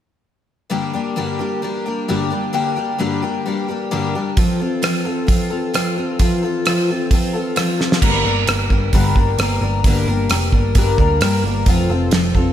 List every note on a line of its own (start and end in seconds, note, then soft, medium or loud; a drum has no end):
0.70 0.93 G2 medium
0.70 0.93 D3 medium
0.70 0.94 G3 medium
0.70 0.94 A#3 medium
0.70 0.93 D4 medium
0.70 0.92 G4 medium
0.94 1.16 G3 soft
0.94 1.16 A#3 soft
0.94 1.17 D4 soft
0.94 1.16 G4 soft
1.16 1.39 G2 medium
1.16 1.39 D3 medium
1.16 1.40 G3 medium
1.16 1.40 A#3 medium
1.16 1.39 D4 medium
1.16 1.38 G4 medium
1.39 1.61 G3 soft
1.39 1.62 A#3 soft
1.39 1.63 D4 soft
1.39 1.62 G4 soft
1.62 1.85 G3 soft
1.62 1.86 A#3 soft
1.62 1.85 D4 soft
1.62 1.85 G4 medium
1.86 2.07 G3 soft
1.86 2.08 A#3 soft
1.86 2.09 D4 soft
1.86 2.09 G4 soft
2.08 2.31 G2 medium
2.08 2.32 D3 medium
2.08 2.31 G3 medium
2.08 2.31 A#3 medium
2.08 2.30 D4 medium
2.08 2.29 G4 medium
2.30 2.53 G3 soft
2.30 2.53 A#3 soft
2.30 2.53 D4 soft
2.30 2.53 G4 soft
2.53 2.76 G2 medium
2.53 2.77 D3 medium
2.53 2.77 G3 medium
2.53 2.77 A#3 medium
2.53 2.76 D4 medium
2.53 2.75 G4 medium
2.76 2.98 G3 soft
2.76 2.99 A#3 soft
2.76 2.99 D4 soft
2.76 2.99 G4 soft
2.99 3.22 G2 medium
2.99 3.22 D3 medium
2.99 3.22 G3 medium
2.99 3.23 A#3 medium
2.99 3.22 D4 medium
2.99 3.21 G4 medium
3.22 3.44 G3 soft
3.22 3.45 A#3 soft
3.22 3.46 D4 soft
3.22 3.45 G4 soft
3.46 3.68 G3 medium
3.46 3.69 A#3 medium
3.46 3.68 D4 medium
3.46 3.67 G4 medium
3.68 3.90 G3 soft
3.68 3.90 A#3 soft
3.68 3.92 D4 soft
3.68 3.91 G4 soft
3.91 4.14 G2 medium
3.91 4.14 D3 medium
3.91 4.14 G3 medium
3.91 4.14 A#3 medium
3.91 4.14 D4 medium
3.91 4.14 G4 medium
4.15 4.36 G3 soft
4.15 4.37 A#3 soft
4.15 4.38 D4 soft
4.15 4.38 G4 soft
4.37 4.60 F3 medium
4.37 4.60 C4 medium
4.37 4.60 F4 medium
4.37 4.58 A4 medium
4.37 kick medium
4.37 open hi-hat soft
4.59 4.81 C4 soft
4.59 4.82 F4 soft
4.59 4.82 A4 medium
4.82 5.05 F3 medium
4.82 5.05 C4 medium
4.82 5.05 F4 medium
4.82 5.04 A4 medium
4.82 cross-stick medium
4.82 open hi-hat soft
5.05 5.27 C4 soft
5.05 5.28 F4 soft
5.05 5.28 A4 soft
5.27 5.50 F3 soft
5.27 5.51 C4 medium
5.27 5.50 F4 medium
5.27 5.49 A4 medium
5.27 kick medium
5.27 open hi-hat soft
5.50 5.73 C4 soft
5.50 5.73 F4 soft
5.50 5.74 A4 soft
5.74 5.97 F3 medium
5.74 5.97 C4 medium
5.74 5.97 F4 medium
5.74 5.95 A4 medium
5.74 cross-stick medium
5.74 open hi-hat soft
5.96 6.19 C4 soft
5.96 6.20 F4 soft
5.96 6.19 A4 soft
6.19 6.43 F3 medium
6.19 6.43 C4 medium
6.19 6.43 F4 medium
6.19 6.41 A4 medium
6.19 kick medium
6.19 open hi-hat soft
6.43 6.66 C4 soft
6.43 6.66 F4 soft
6.43 6.65 A4 soft
6.66 6.89 F3 medium
6.66 6.89 C4 medium
6.66 6.89 F4 medium
6.66 6.88 A4 medium
6.66 cross-stick medium
6.66 open hi-hat soft
6.89 7.12 C4 soft
6.89 7.12 F4 soft
6.89 7.12 A4 soft
7.11 7.34 F3 medium
7.11 7.35 C4 medium
7.11 7.34 F4 medium
7.11 7.32 A4 medium
7.11 kick medium
7.11 open hi-hat soft
7.34 7.55 C4 soft
7.34 7.56 F4 soft
7.34 7.56 A4 soft
7.56 7.79 F3 medium
7.56 7.79 C4 medium
7.56 7.80 F4 medium
7.56 7.78 A4 medium
7.56 cross-stick medium
7.56 open hi-hat soft
7.79 8.03 C4 soft
7.79 8.03 F4 soft
7.79 8.02 A4 soft
7.79 snare soft
7.92 snare medium
8.02 8.24 G1 medium
8.02 8.25 G2 medium
8.02 8.25 D3 medium
8.02 8.25 G3 medium
8.02 8.25 A#3 medium
8.02 8.25 D4 medium
8.02 8.24 A#4 medium
8.02 kick loud
8.02 crash medium
8.25 8.47 G1 medium
8.25 8.46 G3 soft
8.25 8.47 A#3 soft
8.25 8.48 D4 medium
8.25 8.48 A#4 soft
8.47 8.69 G1 medium
8.47 8.70 G3 soft
8.47 8.71 A#3 medium
8.47 8.70 D4 medium
8.47 8.69 A#4 medium
8.47 cross-stick loud
8.47 open hi-hat soft
8.70 8.92 G1 medium
8.70 8.93 G3 soft
8.70 8.93 A#3 soft
8.70 8.94 D4 soft
8.70 8.93 A#4 soft
8.70 kick medium
8.93 9.14 G1 medium
8.93 9.16 G2 medium
8.93 9.16 D3 medium
8.93 9.17 G3 medium
8.93 9.17 A#3 medium
8.93 9.17 D4 medium
8.93 9.16 A#4 medium
8.93 kick medium
8.93 open hi-hat soft
9.16 9.37 G1 medium
9.16 9.39 G3 soft
9.16 9.40 A#3 soft
9.16 9.40 D4 soft
9.16 9.39 A#4 soft
9.16 kick medium
9.39 9.60 G1 medium
9.39 9.63 G3 medium
9.39 9.62 A#3 medium
9.39 9.62 D4 medium
9.39 cross-stick medium
9.39 open hi-hat soft
9.43 9.60 A#4 medium
9.61 9.83 G1 medium
9.61 9.85 G3 soft
9.61 9.85 A#3 soft
9.61 9.85 D4 soft
9.61 9.84 A#4 soft
9.84 10.06 G1 medium
9.84 10.08 G2 medium
9.84 10.08 D3 medium
9.84 10.08 G3 medium
9.84 10.08 A#3 medium
9.84 10.08 D4 medium
9.84 10.06 A#4 medium
9.84 kick loud
9.84 open hi-hat soft
10.07 10.29 G1 medium
10.07 10.29 G3 soft
10.07 10.30 A#3 soft
10.07 10.31 D4 soft
10.07 10.30 A#4 medium
10.30 10.51 F1 medium
10.30 10.53 G3 medium
10.30 10.53 A#3 medium
10.30 10.53 D4 medium
10.30 10.52 A#4 medium
10.30 cross-stick medium
10.30 open hi-hat soft
10.53 10.74 G1 medium
10.53 10.76 G3 soft
10.53 10.76 A#3 soft
10.53 10.76 D4 soft
10.53 10.76 A#4 soft
10.53 kick medium
10.75 10.97 G1 medium
10.75 10.99 G2 medium
10.75 10.99 D3 medium
10.75 10.99 G3 medium
10.75 10.99 A#3 medium
10.75 10.98 D4 medium
10.75 10.97 A#4 medium
10.75 kick medium
10.75 open hi-hat soft
10.98 11.20 D2 medium
10.98 11.20 G3 soft
10.98 11.21 A#3 soft
10.98 11.22 D4 soft
10.98 11.21 A#4 soft
10.98 kick medium
11.21 11.42 G2 medium
11.21 11.44 G3 medium
11.21 11.44 A#3 medium
11.21 11.45 D4 medium
11.21 11.44 A#4 medium
11.21 cross-stick medium
11.21 open hi-hat soft
11.44 11.65 G1 medium
11.44 11.68 A#3 soft
11.44 11.68 D4 soft
11.44 11.67 A#4 soft
11.48 11.67 G3 soft
11.66 11.88 F1 medium
11.66 11.90 F3 medium
11.66 11.90 C4 medium
11.66 11.90 F4 medium
11.66 11.89 A4 medium
11.66 kick loud
11.66 open hi-hat soft
11.89 12.11 F1 medium
11.89 12.12 C4 soft
11.89 12.12 F4 soft
11.89 12.12 A4 soft
12.11 12.33 F1 medium
12.11 12.35 F3 soft
12.11 12.35 C4 medium
12.11 12.36 F4 medium
12.11 12.34 A4 medium
12.11 snare medium
12.11 open hi-hat soft
12.35 12.53 F1 medium
12.35 12.53 C4 soft
12.35 12.53 F4 soft
12.35 12.53 A4 medium
12.35 kick medium